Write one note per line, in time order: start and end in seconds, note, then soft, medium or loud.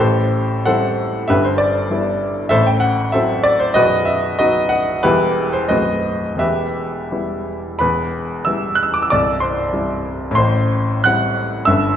0.00 1.26 A1 medium
0.00 1.26 A2 medium
0.00 0.63 G4 medium
0.00 0.63 A4 medium
0.00 0.65 C5 loud
0.66 1.26 G3 medium
0.66 1.26 C4 medium
0.66 1.26 E4 medium
0.66 1.25 A4 medium
0.66 1.25 C5 medium
0.66 1.29 F#5 loud
1.28 2.48 G1 medium
1.28 2.48 G2 medium
1.28 1.43 G4 medium
1.28 1.44 B4 medium
1.28 1.44 E5 loud
1.45 1.60 C5 medium
1.58 2.51 D5 loud
1.90 2.48 G3 medium
1.90 2.48 B3 medium
1.90 2.48 E4 medium
2.49 3.73 A1 medium
2.49 3.73 A2 medium
2.49 2.66 A4 loud
2.49 2.66 C5 loud
2.49 2.66 E5 loud
2.67 2.83 G5 medium
2.80 3.13 F#5 loud
3.12 3.73 F#3 medium
3.12 3.73 C4 medium
3.12 3.74 E4 medium
3.12 3.43 A4 medium
3.12 3.43 C5 medium
3.12 3.45 E5 loud
3.44 3.60 D5 loud
3.60 3.76 C5 loud
3.74 5.00 B0 medium
3.74 5.00 B1 medium
3.74 4.05 F#4 medium
3.74 4.05 B4 medium
3.74 4.07 D#5 loud
4.05 4.39 E5 medium
4.39 5.00 F#3 medium
4.39 5.00 B3 soft
4.39 5.00 D#4 medium
4.39 4.69 F#4 medium
4.39 4.69 B4 medium
4.39 4.71 D#5 loud
4.69 5.03 F#5 loud
5.03 5.68 E1 medium
5.03 5.68 E2 medium
5.03 5.66 G3 medium
5.03 5.66 B3 medium
5.03 5.50 E4 medium
5.03 5.49 G4 medium
5.03 5.53 B4 loud
5.53 5.69 C5 medium
5.68 6.38 B0 medium
5.68 6.38 B1 medium
5.68 6.36 A3 medium
5.68 6.37 C4 medium
5.68 6.37 F#4 medium
5.68 6.36 B4 medium
5.68 6.36 C5 medium
5.68 6.39 D#5 loud
6.35 7.74 E1 medium
6.35 7.75 E2 medium
6.39 7.43 G4 medium
6.39 7.42 B4 medium
6.39 7.46 E5 loud
7.12 7.77 G3 medium
7.12 7.77 B3 soft
7.12 7.77 E4 medium
7.79 9.07 E1 medium
7.79 9.07 E2 medium
7.79 8.42 B4 medium
7.79 8.45 B5 loud
8.45 9.07 G3 medium
8.45 9.07 B3 soft
8.45 9.07 E4 medium
8.45 8.73 E5 medium
8.45 8.74 E6 loud
8.75 8.84 F#6 medium
8.83 8.92 E6 medium
8.94 9.02 D6 medium
9.02 9.11 E6 medium
9.10 10.34 C1 medium
9.10 10.33 C2 medium
9.10 9.40 D5 medium
9.10 9.42 D6 loud
9.40 10.32 C5 medium
9.40 10.34 C6 loud
9.73 10.32 G3 medium
9.73 10.33 C4 medium
9.73 10.33 E4 medium
10.31 11.61 A2 medium
10.35 11.65 A1 medium
10.35 11.01 C5 medium
10.35 11.04 C6 loud
11.04 11.64 G3 medium
11.04 11.65 C4 medium
11.04 11.65 E4 medium
11.04 11.64 F#5 loud
11.04 11.68 F#6 loud
11.65 11.96 G1 medium
11.65 11.96 G2 medium
11.65 11.96 E5 medium
11.65 11.96 E6 loud